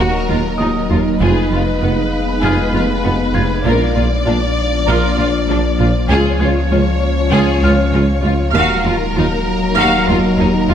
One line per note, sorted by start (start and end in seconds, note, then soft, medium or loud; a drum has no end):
0.00 1.22 D#1 medium
0.00 1.16 F#3 medium
0.00 1.17 F#3 medium
0.00 1.17 A#3 medium
0.00 3.61 D#4 medium
0.00 3.62 D#4 medium
0.00 0.26 F#4 soft
0.00 0.26 F#4 medium
0.00 1.16 A#4 soft
0.00 1.16 D#5 medium
0.00 1.78 C#6 soft
0.00 0.55 F#6 soft
0.00 impact medium
0.28 0.41 D#2 soft
0.28 0.37 D#2 soft
0.28 0.36 F4 soft
0.28 0.37 F4 soft
0.58 0.67 D#2 soft
0.58 0.71 D#2 soft
0.58 0.68 D#2 soft
0.58 0.69 D#4 soft
0.58 0.67 F4 soft
0.58 2.38 D#6 medium
0.89 0.97 D#2 soft
0.89 1.02 D#2 soft
0.89 0.99 D#2 soft
0.89 0.97 F4 soft
0.89 0.99 F4 soft
1.19 3.67 F1 medium
1.19 1.33 F1 medium
1.19 1.29 F1 medium
1.19 1.28 F2 medium
1.19 3.61 G#3 medium
1.19 3.66 G#3 medium
1.19 3.66 B3 medium
1.19 1.48 F4 medium
1.19 1.50 G#4 soft
1.19 3.61 B4 medium
1.19 3.66 F5 medium
1.50 1.64 F1 soft
1.50 1.60 F1 soft
1.50 1.59 F2 soft
1.50 1.58 F4 soft
1.50 1.61 F4 soft
1.80 1.90 F1 soft
1.80 1.95 F1 soft
1.80 1.90 F2 soft
1.80 1.91 B3 soft
1.80 1.88 F4 soft
2.42 2.51 F1 medium
2.42 2.56 F1 medium
2.42 2.51 F2 medium
2.42 2.71 F4 medium
2.42 2.71 G#4 soft
2.42 4.23 F6 soft
2.73 2.82 F1 soft
2.73 2.86 F1 soft
2.73 2.82 F2 soft
2.73 2.81 F4 soft
2.73 2.82 F4 soft
3.03 3.17 F1 soft
3.03 3.13 F1 soft
3.03 3.12 F2 soft
3.03 3.12 B3 soft
3.03 3.11 F4 soft
3.34 3.43 F1 soft
3.34 3.48 F1 soft
3.34 3.43 F2 soft
3.34 3.42 F4 soft
3.34 3.43 F4 soft
3.34 5.14 G#6 soft
3.65 3.73 A#1 medium
3.65 6.12 A#1 medium
3.65 3.79 A#1 medium
3.65 3.73 A#2 medium
3.65 8.55 F3 medium
3.65 8.51 F3 medium
3.65 6.10 A#3 medium
3.65 5.93 D4 medium
3.65 3.94 F4 medium
3.65 8.51 F4 medium
3.65 3.94 A#4 medium
3.65 6.10 D5 medium
3.96 4.04 A#1 soft
3.96 4.09 A#1 soft
3.96 4.04 A#2 soft
3.96 4.04 F4 soft
4.25 4.34 A#1 soft
4.25 4.39 A#1 soft
4.25 4.35 A#2 soft
4.25 4.34 D4 soft
4.25 4.33 F4 soft
4.87 4.95 A#1 medium
4.87 5.00 A#1 medium
4.87 4.96 A#2 medium
4.87 5.16 F4 medium
4.87 5.16 A#4 medium
4.87 6.68 F6 medium
5.17 5.26 A#1 soft
5.17 5.31 A#1 soft
5.17 5.26 A#2 soft
5.17 5.25 F4 medium
5.17 5.26 F4 soft
5.49 5.57 A#1 soft
5.49 5.61 A#1 soft
5.49 5.57 A#2 soft
5.49 5.57 D4 soft
5.49 5.57 F4 medium
5.79 5.92 A#1 soft
5.79 5.87 A#1 soft
5.79 5.88 A#2 soft
5.79 5.87 F4 medium
5.79 5.88 F4 soft
6.09 6.17 C#2 medium
6.09 6.22 C#2 medium
6.09 8.57 C#2 medium
6.09 8.55 G#3 medium
6.09 8.51 C#4 medium
6.09 6.38 F4 medium
6.09 6.39 G#4 medium
6.09 8.55 C#5 medium
6.09 10.74 F5 medium
6.40 6.48 C#2 medium
6.40 6.53 C#2 medium
6.40 6.48 C#2 medium
6.40 6.48 F4 soft
6.40 6.49 F4 soft
6.40 8.20 G#6 soft
6.71 6.83 C#2 medium
6.71 6.79 C#2 medium
6.71 6.80 C#2 medium
6.71 6.80 C#4 medium
6.71 6.79 F4 medium
7.32 7.40 C#2 medium
7.32 7.45 C#2 medium
7.32 7.61 F4 medium
7.32 7.61 G#4 medium
7.62 7.75 C#2 medium
7.62 7.71 C#2 medium
7.62 7.70 F4 medium
7.62 7.72 F4 medium
7.62 9.43 F6 medium
7.93 8.01 C#2 medium
7.93 8.06 C#2 medium
7.93 8.03 C#4 medium
7.93 8.01 F4 medium
8.23 8.31 C#2 soft
8.23 8.31 C#2 medium
8.23 8.37 C#2 medium
8.23 8.31 F4 medium
8.23 8.33 F4 soft
8.54 10.74 D#1 medium
8.54 8.62 D#2 medium
8.54 8.67 D#2 medium
8.54 10.74 F#3 medium
8.54 10.74 A#3 medium
8.54 10.74 D#4 medium
8.54 8.85 F#4 medium
8.54 10.74 A#4 medium
8.54 8.83 F5 medium
8.85 8.93 D#2 medium
8.85 8.97 D#2 medium
8.85 8.93 F4 soft
8.85 8.94 F4 medium
9.15 9.28 D#2 medium
9.15 9.24 D#2 medium
9.15 9.26 D#4 medium
9.15 9.23 F4 medium
9.77 9.85 D#2 medium
9.77 9.90 D#2 medium
9.77 9.85 D#2 medium
9.77 10.07 F#4 medium
9.77 10.06 F5 medium
9.77 10.74 A#5 soft
9.77 10.74 A#6 medium
10.07 10.16 D#2 medium
10.07 10.20 D#2 medium
10.07 10.15 F4 medium
10.07 10.17 F4 medium
10.37 10.46 D#2 medium
10.37 10.51 D#2 medium
10.37 10.46 D#2 medium
10.37 10.48 D#4 medium
10.37 10.45 F4 medium
10.69 10.74 D#2 medium
10.69 10.74 F4 medium